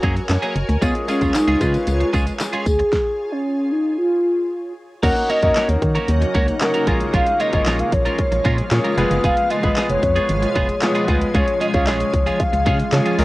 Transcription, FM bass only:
0.03 0.20 F#2 loud
0.29 0.38 F#2 loud
0.56 0.64 F#1 medium
0.69 0.77 D2 medium
0.82 0.90 C#2 loud
1.22 1.30 D#2 medium
1.48 1.56 C#2 loud
1.61 1.78 C#3 loud
1.87 2.04 C#2 loud
2.14 2.30 C#2 loud
2.66 2.83 D2 medium
5.03 5.11 D#2 loud
5.43 5.51 F#2 medium
5.69 5.77 D#2 loud
5.82 5.99 D#3 loud
6.08 6.25 D#2 loud
6.35 6.51 C#2 loud
6.87 7.04 A#1 loud
7.14 7.22 A#1 loud
7.53 7.61 G#1 medium
7.66 7.83 A#1 loud
7.93 8.09 A#1 loud
8.32 8.40 A#1 medium
8.45 8.62 A#2 loud
8.71 8.80 A#2 loud
8.98 9.06 F1 loud
9.11 9.19 F#1 loud
9.24 9.32 F1 loud
9.64 9.72 G#1 loud
9.90 9.98 F1 medium
10.03 10.20 F2 loud
10.29 10.46 G#1 loud
10.56 10.72 F1 medium
11.08 11.25 D2 loud
11.35 11.43 C#2 loud
11.74 11.89 C#2 loud
11.87 12.04 A#1 loud
12.13 12.30 C#2 medium
12.53 12.68 C#2 loud
12.66 12.83 C#3 loud
12.92 13.01 C#3 loud
13.19 13.25 C#2 medium

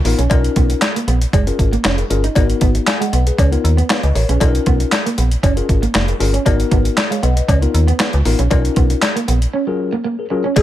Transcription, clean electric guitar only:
0.05 muted clean electric guitar stroke soft
0.18 0.28 C#4 medium
0.31 0.41 D#4 medium
0.56 0.67 B3 medium
0.70 muted clean electric guitar stroke soft
0.82 muted clean electric guitar stroke soft
0.96 1.05 A#3 medium
1.08 1.18 B3 medium
1.34 1.44 G#3 medium
1.47 muted clean electric guitar stroke soft
1.73 1.82 A#3 medium
1.84 1.95 C#4 medium
2.10 muted clean electric guitar stroke soft
2.24 2.33 D#4 medium
2.36 2.46 D#4 medium
2.61 2.72 B3 medium
2.75 muted clean electric guitar stroke soft
2.87 muted clean electric guitar stroke soft
3.00 3.10 G#3 medium
3.13 3.23 B3 medium
3.38 3.49 C#4 medium
3.52 muted clean electric guitar stroke soft
3.77 3.87 B3 medium
3.90 4.00 B3 medium
4.15 muted clean electric guitar stroke soft
4.29 4.38 C#4 medium
4.41 4.51 D#4 medium
4.67 4.77 B3 medium
4.80 muted clean electric guitar stroke soft
4.92 muted clean electric guitar stroke soft
5.06 5.15 A#3 medium
5.18 5.28 B3 medium
5.43 5.54 C#4 medium
5.57 muted clean electric guitar stroke soft
5.82 5.92 A#3 medium
5.95 6.05 A#3 medium
6.20 muted clean electric guitar stroke soft
6.34 6.43 C#4 medium
6.46 6.56 D#4 medium
6.71 6.82 B3 medium
6.85 muted clean electric guitar stroke soft
6.97 muted clean electric guitar stroke soft
7.10 7.20 G#3 medium
7.23 7.33 B3 medium
7.48 7.59 C#4 medium
7.62 muted clean electric guitar stroke soft
7.88 7.97 B3 medium
8.00 8.10 B3 medium
8.25 muted clean electric guitar stroke soft
8.39 8.48 C#4 medium
8.51 8.61 D#4 medium
8.76 8.87 B3 medium
8.90 muted clean electric guitar stroke soft
9.02 muted clean electric guitar stroke soft
9.16 9.25 A#3 medium
9.28 9.38 B3 medium
9.53 9.64 C#4 medium
9.67 muted clean electric guitar stroke soft
9.93 10.02 A#3 medium
10.04 10.15 A#3 medium
10.30 muted clean electric guitar stroke soft
10.44 10.53 C#4 medium
10.56 10.62 G#3 medium

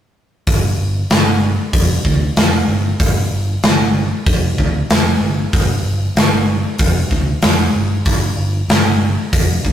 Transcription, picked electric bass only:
0.47 0.70 G1 medium
0.78 1.00 G1 medium
1.10 1.55 G1 medium
1.73 1.96 F2 medium
2.05 2.28 D2 medium
2.37 2.59 F2 medium
2.68 2.91 G1 medium
3.01 3.23 G1 medium
3.31 3.54 G1 medium
3.64 4.09 G1 medium
4.27 4.49 F2 medium
4.58 4.80 D2 medium
4.90 5.13 F2 medium
5.20 5.43 G1 medium
5.54 5.76 G1 medium
5.83 6.06 G1 medium
6.16 6.61 G1 medium
6.79 7.02 F2 medium
7.10 7.33 D2 medium
7.44 7.66 F2 loud
7.75 7.97 G1 medium
8.06 8.29 G1 medium
8.37 8.60 G1 medium
8.68 9.14 G1 medium
9.33 9.56 F2 medium
9.64 9.72 D2 medium

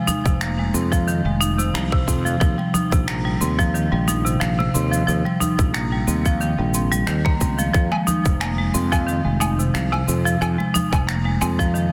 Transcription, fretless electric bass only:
0.26 0.69 F1 medium
0.74 1.20 F2 medium
1.25 1.69 F1 medium
1.74 2.01 C2 medium
2.08 2.35 F2 medium
2.41 2.55 D#2 loud
2.92 3.36 A#1 medium
3.41 3.86 D#2 medium
3.92 4.36 A#1 medium
4.41 4.68 A#1 medium
4.75 5.02 D#2 loud
5.08 5.22 D#2 loud
5.59 6.03 A#1 medium
6.08 6.53 D#2 medium
6.59 7.03 A#1 medium
7.08 7.35 D#2 medium
7.41 7.68 C#2 medium
7.74 7.89 F2 medium
8.26 8.69 F1 medium
8.74 9.20 F2 medium
9.26 9.69 F1 medium
9.75 10.01 C2 medium
10.08 10.35 F2 medium
10.42 10.56 F2 loud
10.93 11.36 F1 medium
11.42 11.87 F2 medium

